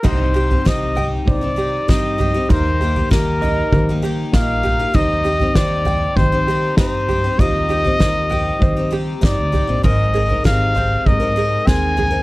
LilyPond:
<<
  \new Staff \with { instrumentName = "Trumpet" } { \time 4/4 \key c \minor \tempo 4 = 98 c''4 ees''4 d''4 ees''4 | c''4 bes'4. r8 f''4 | ees''4 d''4 c''4 c''4 | ees''2~ ees''8 r8 d''4 |
ees''4 f''4 ees''4 aes''4 | }
  \new Staff \with { instrumentName = "Ukulele" } { \time 4/4 \key c \minor ees'8 g'8 c''8 g''8 c''8 g'8 ees'8 g'8 | ees'8 g'8 bes'8 ees''8 bes'8 g'8 ees'8 g'8 | ees'8 g'8 c''8 g''8 c''8 g'8 ees'8 g'8 | ees'8 g'8 c''8 g''8 c''8 g'8 ees'8 g'8 |
c'8 aes'8 bes'8 c''8 bes'8 aes'8 c'8 aes'8 | }
  \new Staff \with { instrumentName = "Twelve-string acoustic guitar" } { \time 4/4 \key c \minor <c ees c' ees' g'>8 <ees c' ees' g'>16 <c' ees' g'>16 <c ees c' ees' g'>8 <ees c' ees' g'>8. <c' ees' g'>16 <ees c' ees' g'>8 <c ees c' ees' g'>8 <ees c' ees' g'>16 <c' ees' g'>16 | <ees bes ees' g'>8 <ees bes ees' g'>16 <bes ees' g'>16 <ees bes ees' g'>8 <ees bes ees' g'>8. <bes ees' g'>16 <ees bes ees' g'>8 <ees bes ees' g'>8 <ees bes ees' g'>16 <bes ees' g'>16 | <ees c' ees' g'>8 <ees c' ees' g'>16 <c' ees' g'>16 <ees c' ees' g'>8 <ees c' ees' g'>8. <c' ees' g'>16 <ees c' ees' g'>8 <ees c' ees' g'>8 <ees c' ees' g'>16 <c' ees' g'>16 | <ees c' ees' g'>8 <ees c' ees' g'>16 <c' ees' g'>16 <ees c' ees' g'>8 <ees c' ees' g'>8. <c' ees' g'>16 <ees c' ees' g'>8 <ees c' ees' g'>8 <ees c' ees' g'>16 <c' ees' g'>16 |
<aes c' ees' bes'>8 <aes c' ees' bes'>16 <c' ees' bes'>16 <aes c' ees' bes'>8 <aes c' ees' bes'>8. <c' ees' bes'>16 <aes c' ees' bes'>8 <aes c' ees' bes'>8 <aes c' ees' bes'>16 <c' ees' bes'>16 | }
  \new Staff \with { instrumentName = "Felt piano" } { \time 4/4 \key c \minor <g c' ees' c''>8 r8 <g c' ees' c''>8 r8 <g c' ees' c''>8 r8 <g c' ees' c''>8 r8 | <g bes ees' bes'>8 r8 <g bes ees' bes'>8 r8 <g bes ees' c''>8 r8 <g bes ees' f'>8 r8 | <g c' ees' c''>8 r8 <g c' ees' c''>8 r8 <g c' ees' c''>8 r8 <g c' ees' c''>8 r8 | <g c' ees' f'>8 r8 <g c' ees' bes'>8 r8 <g c' ees' c''>8 r8 <g c' ees' c''>8 r8 |
<aes c' ees' bes'>8 r8 <aes c' ees' g'>8 r8 <aes c' ees' bes'>8 r8 <aes c' ees' bes'>8 r8 | }
  \new Staff \with { instrumentName = "Felt piano" } { \clef bass \time 4/4 \key c \minor <c, c>1 | <ees, ees>1 | <ees, ees>1 | <ees, ees>1 |
<aes,, aes,>1 | }
  \new Staff \with { instrumentName = "Upright bass" } { \clef bass \time 4/4 \key c \minor c,4 c,4 c4 g,4 | ees,4 ees,4 ees4 bes,,4 | ees,4 ees,4 ees4 g,4 | ees,4 ees,4 ees4 g,16 d,16 c,16 bes,,16 |
aes,,4 aes,,4 aes,4 ees,4 | }
  \new DrumStaff \with { instrumentName = "Drums" } \drummode { \time 4/4 <cymc bd tomfh>8. tomfh16 <bd sn>8 tomfh8 <bd tomfh>4 <bd sn>8 tomfh8 | <bd tomfh>8. tomfh16 <bd sn>8 tomfh8 <bd tomfh>4 <bd sn>8 tomfh8 | <bd tomfh>8. tomfh16 <bd sn>8 tomfh8 <bd tomfh>4 <bd sn>8 tomfh8 | <bd tomfh>8. tomfh16 <bd sn>8 tomfh8 <bd tomfh>4 <bd sn>8 tomfh8 |
<bd tomfh>8. tomfh16 <bd sn>8 tomfh8 <bd tomfh>4 <bd sn>8 tomfh8 | }
>>